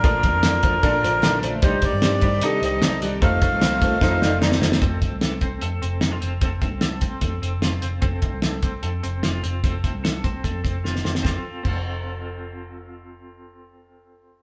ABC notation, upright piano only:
X:1
M:4/4
L:1/8
Q:1/4=149
K:Fmix
V:1 name="Upright piano"
[DFAB] [DFAB] [DFAB] [DFAc] [DFAB] [DFAc] [DFAB] [DFAc] | [DEGc] [DEGc] [DEGc] [DEGc] [DEGA] [DEGc] [DEGc] [DEGd] | [EFAc] [EFAc] [EFAc] [EFAc] [EFAc] [EFAd] [EFAd] [EFAc] | z8 |
z8 | z8 | z8 | z8 |
z8 |]